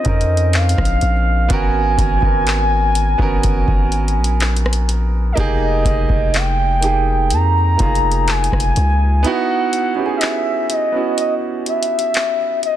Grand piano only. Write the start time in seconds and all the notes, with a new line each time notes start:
Already playing: C4 C#4 D#4 F4
0.04 C4 C#4 D#4
0.08 A#4
1.48 B3 C#4 F#4
1.53 A#4
2.21 B3 C#4 F#4
2.25 A#4
3.18 B3 C#4 F#4
3.22 A#4
5.35 A#3 D#4 G4
5.40 G#4
6.81 A#3 D#4 G4
6.85 G#4
7.77 A#3 D#4 F4
7.82 G#4
9.23 B3 D#4 E4
9.27 F#4
9.95 B3 C#4 E4
9.99 G4
10.06 G#4
10.92 B3 C#4 E4
10.97 F#4